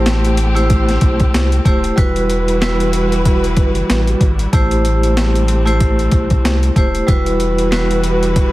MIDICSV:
0, 0, Header, 1, 5, 480
1, 0, Start_track
1, 0, Key_signature, 1, "minor"
1, 0, Tempo, 638298
1, 1484, Time_signature, 4, 2, 24, 8
1, 6409, End_track
2, 0, Start_track
2, 0, Title_t, "Vibraphone"
2, 0, Program_c, 0, 11
2, 0, Note_on_c, 0, 57, 98
2, 0, Note_on_c, 0, 64, 89
2, 0, Note_on_c, 0, 67, 85
2, 0, Note_on_c, 0, 72, 96
2, 344, Note_off_c, 0, 57, 0
2, 346, Note_off_c, 0, 64, 0
2, 348, Note_off_c, 0, 67, 0
2, 350, Note_off_c, 0, 72, 0
2, 411, Note_on_c, 0, 57, 90
2, 416, Note_on_c, 0, 64, 95
2, 421, Note_on_c, 0, 67, 77
2, 424, Note_on_c, 0, 72, 95
2, 1182, Note_off_c, 0, 57, 0
2, 1184, Note_off_c, 0, 64, 0
2, 1187, Note_off_c, 0, 67, 0
2, 1188, Note_off_c, 0, 72, 0
2, 1242, Note_on_c, 0, 57, 74
2, 1247, Note_on_c, 0, 64, 72
2, 1251, Note_on_c, 0, 67, 71
2, 1256, Note_on_c, 0, 72, 85
2, 1467, Note_off_c, 0, 57, 0
2, 1470, Note_off_c, 0, 64, 0
2, 1472, Note_off_c, 0, 67, 0
2, 1474, Note_off_c, 0, 72, 0
2, 1475, Note_on_c, 0, 55, 94
2, 1480, Note_on_c, 0, 64, 85
2, 1485, Note_on_c, 0, 66, 91
2, 1489, Note_on_c, 0, 71, 107
2, 1927, Note_off_c, 0, 55, 0
2, 1930, Note_off_c, 0, 64, 0
2, 1932, Note_off_c, 0, 66, 0
2, 1934, Note_off_c, 0, 71, 0
2, 1959, Note_on_c, 0, 55, 95
2, 1964, Note_on_c, 0, 64, 90
2, 1969, Note_on_c, 0, 66, 92
2, 1973, Note_on_c, 0, 71, 98
2, 3179, Note_off_c, 0, 55, 0
2, 3181, Note_off_c, 0, 64, 0
2, 3184, Note_off_c, 0, 66, 0
2, 3186, Note_off_c, 0, 71, 0
2, 3405, Note_on_c, 0, 57, 95
2, 3409, Note_on_c, 0, 64, 91
2, 3414, Note_on_c, 0, 67, 85
2, 3419, Note_on_c, 0, 72, 98
2, 4186, Note_off_c, 0, 57, 0
2, 4188, Note_off_c, 0, 64, 0
2, 4190, Note_off_c, 0, 67, 0
2, 4193, Note_off_c, 0, 72, 0
2, 4252, Note_on_c, 0, 57, 90
2, 4256, Note_on_c, 0, 64, 94
2, 4260, Note_on_c, 0, 67, 83
2, 4265, Note_on_c, 0, 72, 99
2, 5022, Note_off_c, 0, 57, 0
2, 5024, Note_off_c, 0, 64, 0
2, 5026, Note_off_c, 0, 67, 0
2, 5029, Note_off_c, 0, 72, 0
2, 5083, Note_on_c, 0, 57, 77
2, 5089, Note_on_c, 0, 64, 75
2, 5092, Note_on_c, 0, 67, 71
2, 5097, Note_on_c, 0, 72, 87
2, 5308, Note_off_c, 0, 57, 0
2, 5311, Note_off_c, 0, 64, 0
2, 5312, Note_off_c, 0, 67, 0
2, 5315, Note_off_c, 0, 72, 0
2, 5315, Note_on_c, 0, 55, 95
2, 5320, Note_on_c, 0, 64, 86
2, 5324, Note_on_c, 0, 66, 92
2, 5329, Note_on_c, 0, 71, 107
2, 5768, Note_off_c, 0, 55, 0
2, 5770, Note_off_c, 0, 64, 0
2, 5772, Note_off_c, 0, 66, 0
2, 5774, Note_off_c, 0, 71, 0
2, 5798, Note_on_c, 0, 55, 98
2, 5803, Note_on_c, 0, 64, 90
2, 5807, Note_on_c, 0, 66, 97
2, 5812, Note_on_c, 0, 71, 97
2, 6409, Note_off_c, 0, 55, 0
2, 6409, Note_off_c, 0, 64, 0
2, 6409, Note_off_c, 0, 66, 0
2, 6409, Note_off_c, 0, 71, 0
2, 6409, End_track
3, 0, Start_track
3, 0, Title_t, "String section"
3, 0, Program_c, 1, 48
3, 0, Note_on_c, 1, 57, 83
3, 0, Note_on_c, 1, 60, 73
3, 0, Note_on_c, 1, 67, 91
3, 1461, Note_off_c, 1, 57, 0
3, 1461, Note_off_c, 1, 67, 0
3, 1462, Note_off_c, 1, 60, 0
3, 1492, Note_on_c, 1, 52, 84
3, 1492, Note_on_c, 1, 64, 76
3, 1492, Note_on_c, 1, 71, 95
3, 1493, Note_on_c, 1, 55, 72
3, 1493, Note_on_c, 1, 66, 73
3, 3389, Note_off_c, 1, 52, 0
3, 3389, Note_off_c, 1, 64, 0
3, 3389, Note_off_c, 1, 71, 0
3, 3390, Note_off_c, 1, 66, 0
3, 3426, Note_on_c, 1, 57, 85
3, 3426, Note_on_c, 1, 60, 74
3, 5299, Note_off_c, 1, 55, 0
3, 5316, Note_off_c, 1, 57, 0
3, 5316, Note_off_c, 1, 60, 0
3, 5330, Note_on_c, 1, 52, 81
3, 5330, Note_on_c, 1, 55, 76
3, 5330, Note_on_c, 1, 66, 72
3, 5330, Note_on_c, 1, 71, 90
3, 5331, Note_on_c, 1, 64, 71
3, 6409, Note_off_c, 1, 52, 0
3, 6409, Note_off_c, 1, 55, 0
3, 6409, Note_off_c, 1, 64, 0
3, 6409, Note_off_c, 1, 66, 0
3, 6409, Note_off_c, 1, 71, 0
3, 6409, End_track
4, 0, Start_track
4, 0, Title_t, "Sub bass"
4, 0, Program_c, 2, 38
4, 0, Note_on_c, 2, 33, 104
4, 736, Note_off_c, 2, 33, 0
4, 765, Note_on_c, 2, 35, 104
4, 959, Note_off_c, 2, 35, 0
4, 1009, Note_on_c, 2, 36, 98
4, 1201, Note_off_c, 2, 36, 0
4, 1245, Note_on_c, 2, 27, 91
4, 1439, Note_off_c, 2, 27, 0
4, 1488, Note_on_c, 2, 28, 107
4, 2685, Note_on_c, 2, 30, 90
4, 2696, Note_off_c, 2, 28, 0
4, 2879, Note_off_c, 2, 30, 0
4, 2930, Note_on_c, 2, 33, 91
4, 3122, Note_off_c, 2, 33, 0
4, 3164, Note_on_c, 2, 32, 93
4, 3359, Note_off_c, 2, 32, 0
4, 3408, Note_on_c, 2, 33, 111
4, 4576, Note_off_c, 2, 33, 0
4, 4604, Note_on_c, 2, 35, 101
4, 4799, Note_off_c, 2, 35, 0
4, 4848, Note_on_c, 2, 36, 97
4, 5041, Note_off_c, 2, 36, 0
4, 5085, Note_on_c, 2, 27, 93
4, 5279, Note_off_c, 2, 27, 0
4, 5327, Note_on_c, 2, 28, 107
4, 6409, Note_off_c, 2, 28, 0
4, 6409, End_track
5, 0, Start_track
5, 0, Title_t, "Drums"
5, 45, Note_on_c, 9, 38, 108
5, 49, Note_on_c, 9, 42, 82
5, 121, Note_off_c, 9, 38, 0
5, 124, Note_off_c, 9, 42, 0
5, 185, Note_on_c, 9, 42, 53
5, 260, Note_off_c, 9, 42, 0
5, 281, Note_on_c, 9, 42, 84
5, 356, Note_off_c, 9, 42, 0
5, 425, Note_on_c, 9, 42, 50
5, 500, Note_off_c, 9, 42, 0
5, 525, Note_on_c, 9, 42, 93
5, 526, Note_on_c, 9, 36, 94
5, 600, Note_off_c, 9, 42, 0
5, 601, Note_off_c, 9, 36, 0
5, 666, Note_on_c, 9, 42, 51
5, 668, Note_on_c, 9, 38, 36
5, 741, Note_off_c, 9, 42, 0
5, 743, Note_off_c, 9, 38, 0
5, 760, Note_on_c, 9, 42, 77
5, 763, Note_on_c, 9, 36, 95
5, 835, Note_off_c, 9, 42, 0
5, 838, Note_off_c, 9, 36, 0
5, 899, Note_on_c, 9, 42, 49
5, 903, Note_on_c, 9, 36, 94
5, 974, Note_off_c, 9, 42, 0
5, 979, Note_off_c, 9, 36, 0
5, 1010, Note_on_c, 9, 38, 104
5, 1012, Note_on_c, 9, 42, 91
5, 1085, Note_off_c, 9, 38, 0
5, 1087, Note_off_c, 9, 42, 0
5, 1144, Note_on_c, 9, 42, 49
5, 1219, Note_off_c, 9, 42, 0
5, 1243, Note_on_c, 9, 36, 94
5, 1245, Note_on_c, 9, 42, 67
5, 1318, Note_off_c, 9, 36, 0
5, 1320, Note_off_c, 9, 42, 0
5, 1383, Note_on_c, 9, 42, 54
5, 1459, Note_off_c, 9, 42, 0
5, 1486, Note_on_c, 9, 36, 116
5, 1487, Note_on_c, 9, 42, 89
5, 1561, Note_off_c, 9, 36, 0
5, 1562, Note_off_c, 9, 42, 0
5, 1624, Note_on_c, 9, 42, 59
5, 1700, Note_off_c, 9, 42, 0
5, 1727, Note_on_c, 9, 42, 77
5, 1802, Note_off_c, 9, 42, 0
5, 1866, Note_on_c, 9, 42, 54
5, 1941, Note_off_c, 9, 42, 0
5, 1968, Note_on_c, 9, 38, 107
5, 1972, Note_on_c, 9, 42, 79
5, 2043, Note_off_c, 9, 38, 0
5, 2047, Note_off_c, 9, 42, 0
5, 2107, Note_on_c, 9, 42, 55
5, 2182, Note_off_c, 9, 42, 0
5, 2204, Note_on_c, 9, 42, 85
5, 2279, Note_off_c, 9, 42, 0
5, 2347, Note_on_c, 9, 42, 49
5, 2422, Note_off_c, 9, 42, 0
5, 2447, Note_on_c, 9, 36, 92
5, 2447, Note_on_c, 9, 42, 94
5, 2522, Note_off_c, 9, 36, 0
5, 2522, Note_off_c, 9, 42, 0
5, 2587, Note_on_c, 9, 42, 52
5, 2662, Note_off_c, 9, 42, 0
5, 2681, Note_on_c, 9, 42, 75
5, 2683, Note_on_c, 9, 36, 97
5, 2757, Note_off_c, 9, 42, 0
5, 2758, Note_off_c, 9, 36, 0
5, 2820, Note_on_c, 9, 42, 51
5, 2896, Note_off_c, 9, 42, 0
5, 2930, Note_on_c, 9, 38, 106
5, 2932, Note_on_c, 9, 42, 94
5, 3006, Note_off_c, 9, 38, 0
5, 3007, Note_off_c, 9, 42, 0
5, 3064, Note_on_c, 9, 42, 51
5, 3139, Note_off_c, 9, 42, 0
5, 3163, Note_on_c, 9, 36, 94
5, 3164, Note_on_c, 9, 42, 68
5, 3238, Note_off_c, 9, 36, 0
5, 3239, Note_off_c, 9, 42, 0
5, 3302, Note_on_c, 9, 42, 53
5, 3378, Note_off_c, 9, 42, 0
5, 3406, Note_on_c, 9, 36, 116
5, 3406, Note_on_c, 9, 42, 96
5, 3481, Note_off_c, 9, 36, 0
5, 3481, Note_off_c, 9, 42, 0
5, 3543, Note_on_c, 9, 42, 61
5, 3619, Note_off_c, 9, 42, 0
5, 3645, Note_on_c, 9, 42, 78
5, 3720, Note_off_c, 9, 42, 0
5, 3785, Note_on_c, 9, 42, 54
5, 3860, Note_off_c, 9, 42, 0
5, 3888, Note_on_c, 9, 38, 111
5, 3892, Note_on_c, 9, 42, 78
5, 3963, Note_off_c, 9, 38, 0
5, 3967, Note_off_c, 9, 42, 0
5, 4027, Note_on_c, 9, 42, 55
5, 4102, Note_off_c, 9, 42, 0
5, 4123, Note_on_c, 9, 42, 82
5, 4198, Note_off_c, 9, 42, 0
5, 4266, Note_on_c, 9, 42, 51
5, 4341, Note_off_c, 9, 42, 0
5, 4365, Note_on_c, 9, 42, 98
5, 4366, Note_on_c, 9, 36, 96
5, 4441, Note_off_c, 9, 36, 0
5, 4441, Note_off_c, 9, 42, 0
5, 4505, Note_on_c, 9, 42, 52
5, 4580, Note_off_c, 9, 42, 0
5, 4598, Note_on_c, 9, 42, 77
5, 4602, Note_on_c, 9, 36, 99
5, 4674, Note_off_c, 9, 42, 0
5, 4677, Note_off_c, 9, 36, 0
5, 4739, Note_on_c, 9, 42, 52
5, 4743, Note_on_c, 9, 36, 92
5, 4814, Note_off_c, 9, 42, 0
5, 4818, Note_off_c, 9, 36, 0
5, 4850, Note_on_c, 9, 38, 107
5, 4852, Note_on_c, 9, 42, 94
5, 4925, Note_off_c, 9, 38, 0
5, 4927, Note_off_c, 9, 42, 0
5, 4985, Note_on_c, 9, 42, 50
5, 5060, Note_off_c, 9, 42, 0
5, 5083, Note_on_c, 9, 36, 94
5, 5085, Note_on_c, 9, 42, 69
5, 5158, Note_off_c, 9, 36, 0
5, 5160, Note_off_c, 9, 42, 0
5, 5224, Note_on_c, 9, 42, 53
5, 5299, Note_off_c, 9, 42, 0
5, 5325, Note_on_c, 9, 36, 119
5, 5326, Note_on_c, 9, 42, 92
5, 5401, Note_off_c, 9, 36, 0
5, 5402, Note_off_c, 9, 42, 0
5, 5462, Note_on_c, 9, 42, 63
5, 5537, Note_off_c, 9, 42, 0
5, 5564, Note_on_c, 9, 42, 75
5, 5639, Note_off_c, 9, 42, 0
5, 5704, Note_on_c, 9, 42, 53
5, 5779, Note_off_c, 9, 42, 0
5, 5806, Note_on_c, 9, 38, 109
5, 5810, Note_on_c, 9, 42, 79
5, 5881, Note_off_c, 9, 38, 0
5, 5885, Note_off_c, 9, 42, 0
5, 5946, Note_on_c, 9, 42, 55
5, 6021, Note_off_c, 9, 42, 0
5, 6042, Note_on_c, 9, 42, 82
5, 6118, Note_off_c, 9, 42, 0
5, 6186, Note_on_c, 9, 42, 49
5, 6261, Note_off_c, 9, 42, 0
5, 6286, Note_on_c, 9, 36, 92
5, 6286, Note_on_c, 9, 42, 95
5, 6361, Note_off_c, 9, 36, 0
5, 6361, Note_off_c, 9, 42, 0
5, 6409, End_track
0, 0, End_of_file